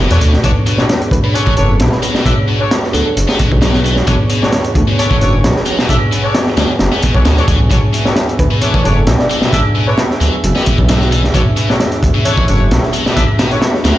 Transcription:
Already playing: analog synth pad B3 D4 A4 B4
0.10 detuned saw bass E2, distorted electric guitar B2, horn section D4 A4 B4 C#5, closed hi-hat
0.21 detuned saw bass D2, distorted electric guitar B2, closed hi-hat
0.34 snare
0.44 detuned saw bass B1, distorted electric guitar B2, horn section D4 A4 B4 C#5, analog synth pad G#4 C#5, kick, closed hi-hat
0.67 distorted electric guitar B2, closed hi-hat
0.78 horn section D4 A4 B4 C#5, snare
0.89 snare, closed hi-hat
1.02 closed hi-hat
1.11 detuned saw bass D2, soft synth lead B4, kick, closed hi-hat
1.24 distorted electric guitar B2, soft synth lead B4
1.35 distorted electric guitar B3, horn section D4 A4 B4 C#5, closed hi-hat
1.47 distorted electric guitar E3, kick
1.57 detuned saw bass F#1, horn section D4 A4 B4 C#5, soft synth lead A4, closed hi-hat
1.69 soft synth lead A4
1.80 detuned saw bass B1, snare, closed hi-hat
1.92 soft synth lead B4, snare
2.03 distorted electric guitar F#3, soft synth lead B4, closed hi-hat
2.15 distorted electric guitar B2, snare
2.25 detuned saw bass B1, distorted electric guitar D3, horn section D4 A4 B4 E5, kick, closed hi-hat
2.48 distorted electric guitar B2
2.60 horn section D4 A4 B4 C#5
2.71 snare, closed hi-hat
2.84 snare
2.94 detuned saw bass D2, distorted electric guitar F#3, soft synth lead A4, closed hi-hat
3.06 soft synth lead A4
3.17 detuned saw bass F#1, closed hi-hat
3.29 distorted electric guitar B3, snare
3.39 distorted electric guitar B2, kick, closed hi-hat
3.52 detuned saw bass B1, kick
3.62 distorted electric guitar B2, snare, closed hi-hat
3.74 distorted electric guitar F#3, snare
3.85 distorted electric guitar E3, closed hi-hat
3.96 snare
4.07 detuned saw bass B1, distorted electric guitar B2, horn section D4 A4 B4 C#5, kick, closed hi-hat
4.30 distorted electric guitar B2, closed hi-hat
4.42 horn section D4 A4 B4 C#5, snare
4.52 snare, closed hi-hat
4.64 closed hi-hat
4.75 detuned saw bass D2, kick, closed hi-hat
4.88 distorted electric guitar B2
4.98 distorted electric guitar B3, horn section D4 A4 B4 C#5, closed hi-hat
5.10 distorted electric guitar E3, kick
5.21 detuned saw bass F#1, horn section D4 A4 B4 C#5, closed hi-hat
5.44 detuned saw bass B1, snare, closed hi-hat
5.56 snare
5.66 distorted electric guitar F#3, closed hi-hat
5.78 distorted electric guitar B2, snare
5.89 detuned saw bass B1, distorted electric guitar D3, horn section D4 A4 B4 E5, kick, closed hi-hat
6.12 distorted electric guitar B2, closed hi-hat
6.24 horn section D4 A4 B4 C#5
6.34 snare, closed hi-hat
6.47 snare
6.57 detuned saw bass D2, distorted electric guitar F#3, snare, closed hi-hat
6.79 detuned saw bass F#1, snare, closed hi-hat
6.92 distorted electric guitar B3, snare
7.02 distorted electric guitar B2, kick, closed hi-hat
7.15 detuned saw bass B1, horn section D4 A4 B4 C#5, kick
7.25 detuned saw bass D2, distorted electric guitar B2, snare, closed hi-hat
7.37 distorted electric guitar F#3, horn section D4 A4 B4 C#5, closed hi-hat
7.48 detuned saw bass D2, distorted electric guitar E3, kick, closed hi-hat
7.60 detuned saw bass B1
7.71 detuned saw bass B1, distorted electric guitar B2, horn section D4 A4 B4 C#5, analog synth pad E5, kick, closed hi-hat
7.94 distorted electric guitar B2, closed hi-hat
8.06 horn section D4 A4 B4 C#5, snare
8.16 snare, closed hi-hat
8.29 closed hi-hat
8.39 detuned saw bass D2, soft synth lead B4, kick, closed hi-hat
8.51 distorted electric guitar B2, soft synth lead B4
8.62 distorted electric guitar E3, horn section D4 A4 B4 C#5, closed hi-hat
8.74 distorted electric guitar E3, kick
8.84 detuned saw bass F#1, horn section D4 A4 B4 C#5, soft synth lead A4, closed hi-hat
8.97 soft synth lead A4
9.07 detuned saw bass B1, snare, closed hi-hat
9.19 soft synth lead D5, snare
9.30 distorted electric guitar F#3, soft synth lead D5, closed hi-hat
9.42 distorted electric guitar B2, snare
9.53 detuned saw bass B1, distorted electric guitar D3, horn section D4 A4 B4 E5, kick, closed hi-hat
9.75 distorted electric guitar B2
9.87 horn section D4 A4 B4 C#5, soft synth lead B4
9.98 soft synth lead B4, snare, closed hi-hat
10.11 snare
10.21 detuned saw bass D2, distorted electric guitar F#3, closed hi-hat
10.44 detuned saw bass F#1, closed hi-hat
10.56 distorted electric guitar B3, snare
10.66 distorted electric guitar B2, kick, closed hi-hat
10.78 detuned saw bass B1, kick
10.89 distorted electric guitar B2, snare, closed hi-hat
11.01 distorted electric guitar F#3, snare
11.12 distorted electric guitar E3, closed hi-hat
11.24 snare
11.34 detuned saw bass B1, distorted electric guitar B2, horn section D4 A4 B4 C#5, kick, closed hi-hat
11.57 distorted electric guitar B2, closed hi-hat
11.69 horn section D4 A4 B4 C#5, snare
11.80 snare, closed hi-hat
11.92 closed hi-hat
12.03 detuned saw bass D2, kick, closed hi-hat
12.14 distorted electric guitar B2
12.25 distorted electric guitar E3, horn section D4 A4 B4 C#5, closed hi-hat
12.37 distorted electric guitar E3, kick
12.48 detuned saw bass F#1, horn section D4 A4 B4 C#5, closed hi-hat
12.71 detuned saw bass B1, snare, closed hi-hat
12.83 snare
12.93 distorted electric guitar F#3, closed hi-hat
13.06 distorted electric guitar B2, snare
13.16 detuned saw bass B1, distorted electric guitar D3, horn section D4 A4 B4 E5, kick, closed hi-hat
13.39 distorted electric guitar B2, snare, closed hi-hat
13.51 horn section D4 A4 B4 C#5, closed hi-hat
13.62 snare, closed hi-hat
13.74 snare
13.85 detuned saw bass D2, distorted electric guitar F#3, snare, closed hi-hat

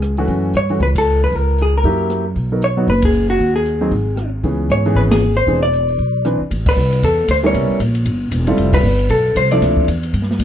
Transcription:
Already playing: upright bass C#2, hollow-body jazz guitar G#4
0.02 cross-stick, closed hi-hat
0.17 upright piano E3 A3 C#4 F#4, open hi-hat
0.28 upright bass F#2, kick, open hi-hat
0.54 upright bass G2, hollow-body jazz guitar C#5, closed hi-hat
0.69 upright piano E3 A3 C#4 F#4, open hi-hat
0.80 upright bass C#2, hollow-body jazz guitar B4, kick, open hi-hat
0.95 hollow-body jazz guitar A4, kick, ride
1.24 hollow-body jazz guitar B4
1.32 upright bass C#2, hollow-body jazz guitar A#4, kick, open hi-hat
1.58 closed hi-hat
1.62 hollow-body jazz guitar G#4
1.78 hollow-body jazz guitar A#4
1.84 upright bass F#2, upright piano F#3 A#3 E4 G4, kick, open hi-hat
2.10 cross-stick, closed hi-hat
2.36 upright bass B1, kick, open hi-hat
2.52 upright piano F#3 B3 D#4 A#4
2.62 hollow-body jazz guitar C#5, closed hi-hat
2.77 upright piano F#3 B3 D#4 F#4
2.87 upright bass F#1, hollow-body jazz guitar B4, kick, open hi-hat
3.02 hollow-body jazz guitar G#4, kick, ride
3.29 hollow-body jazz guitar F#4, open hi-hat
3.39 upright bass D#2, kick, open hi-hat
3.56 hollow-body jazz guitar G#4
3.66 closed hi-hat
3.81 upright piano F#3 C4 D#4 G#4
3.91 upright bass G#1, kick, open hi-hat
4.17 cross-stick, closed hi-hat
4.43 upright bass C#2, upright piano E3 B3 C#4 G#4, kick, open hi-hat
4.69 upright bass G#2, hollow-body jazz guitar C#5, closed hi-hat
4.86 upright piano E3 B3 C#4 G#4, open hi-hat
4.95 upright bass G#1, hollow-body jazz guitar B4, kick, open hi-hat
5.11 hollow-body jazz guitar G#4, snare, ride
5.37 hollow-body jazz guitar C5, open hi-hat
5.47 upright bass E1, upright piano E3 C4 D4 G#4, kick, open hi-hat
5.63 hollow-body jazz guitar D5
5.73 closed hi-hat
5.88 open hi-hat
5.98 upright bass B1, kick, open hi-hat
6.25 upright piano E3 C4 D4 B4, cross-stick, closed hi-hat
6.41 muted upright bass stroke
6.51 upright bass A1, kick, ride
6.66 hollow-body jazz guitar B4, kick, crash
6.76 upright bass C2, hi-hat pedal
6.92 ride
7.03 upright bass E2, hollow-body jazz guitar A4, kick, ride
7.28 upright bass D2, hollow-body jazz guitar C5, kick, hi-hat pedal, ride
7.43 upright piano G3 B3 C#4 E4 A#4, hollow-body jazz guitar C#5
7.54 upright bass C2, kick, ride
7.69 muted upright bass stroke
7.80 upright bass A#1, kick, hi-hat pedal, ride
7.95 ride
8.05 upright bass G1, kick, ride
8.31 upright bass E1, kick, hi-hat pedal, ride
8.47 upright piano G3 C4 E4 F4 A4, ride
8.57 upright bass F1, kick, ride
8.73 hollow-body jazz guitar B4, kick, crash
8.83 upright bass G1, hi-hat pedal
8.99 ride
9.09 upright bass B1, hollow-body jazz guitar A4, kick, ride
9.35 upright bass C2, hollow-body jazz guitar C5, kick, hi-hat pedal, ride
9.51 upright piano F3 C4 D4 E4 A4, hollow-body jazz guitar D5, ride
9.62 upright bass D2, kick, snare, ride
9.77 kick
9.88 upright bass E2, hi-hat pedal, ride
10.03 ride
10.13 upright bass G2, kick, ride
10.22 snare
10.31 snare
10.39 upright bass D2, kick, hi-hat pedal, ride

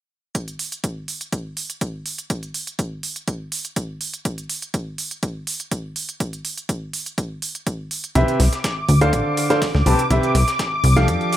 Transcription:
0.35 kick, closed hi-hat
0.48 closed hi-hat
0.59 open hi-hat
0.72 closed hi-hat
0.84 kick, closed hi-hat
1.08 open hi-hat
1.21 closed hi-hat
1.33 kick, closed hi-hat
1.57 open hi-hat
1.70 closed hi-hat
1.81 kick, closed hi-hat
2.06 open hi-hat
2.18 closed hi-hat
2.30 kick, closed hi-hat
2.43 closed hi-hat
2.54 open hi-hat
2.67 closed hi-hat
2.79 kick, closed hi-hat
3.03 open hi-hat
3.16 closed hi-hat
3.28 kick, closed hi-hat
3.52 open hi-hat
3.65 closed hi-hat
3.76 kick, closed hi-hat
4.01 open hi-hat
4.14 closed hi-hat
4.25 kick, closed hi-hat
4.38 closed hi-hat
4.50 open hi-hat
4.62 closed hi-hat
4.74 kick, closed hi-hat
4.98 open hi-hat
5.11 closed hi-hat
5.23 kick, closed hi-hat
5.47 open hi-hat
5.60 closed hi-hat
5.71 kick, closed hi-hat
5.96 open hi-hat
6.09 closed hi-hat
6.20 kick, closed hi-hat
6.33 closed hi-hat
6.45 open hi-hat
6.58 closed hi-hat
6.69 kick, closed hi-hat
6.93 open hi-hat
7.06 closed hi-hat
7.18 kick, closed hi-hat
7.42 open hi-hat
7.55 closed hi-hat
7.67 kick, closed hi-hat
7.91 open hi-hat
8.04 closed hi-hat
8.15 analog synth bass C2, upright piano C3 C4 G4 B4 E5, analog synth pad D6, kick, closed hi-hat
8.28 closed hi-hat
8.40 analog synth bass C2, snare, closed hi-hat, open hi-hat
8.53 snare, closed hi-hat
8.64 kick, snare, closed hi-hat
8.89 analog synth bass D2, closed hi-hat, open hi-hat
9.01 upright piano D3 D4 A4 C5 F5, closed hi-hat
9.13 analog synth bass A1, kick, closed hi-hat
9.37 closed hi-hat, open hi-hat
9.50 upright piano D3 D4 A4 C5 F5, snare, closed hi-hat
9.62 kick, snare, closed hi-hat, open hi-hat
9.75 analog synth bass D2, snare
9.86 analog synth bass C2, upright piano C3 C4 G4 B4 A5, closed hi-hat, open hi-hat
9.99 closed hi-hat
10.11 analog synth bass C2, upright piano C3 C4 G4 B4 E5, kick, closed hi-hat
10.23 closed hi-hat
10.35 analog synth bass C2, snare, closed hi-hat, open hi-hat
10.48 snare, closed hi-hat
10.59 kick, snare, closed hi-hat
10.84 analog synth bass C2, closed hi-hat, open hi-hat
10.96 upright piano F3 D4 G4 A4 F5, snare, closed hi-hat
11.08 analog synth bass F2, kick, closed hi-hat
11.21 closed hi-hat
11.32 snare, closed hi-hat, open hi-hat

